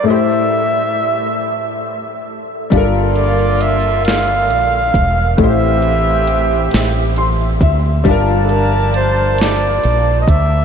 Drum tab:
HH |------|xxxxxx|xxxxxx|xxxxxx|
SD |------|---o--|---o--|---o--|
BD |------|o----o|o----o|o----o|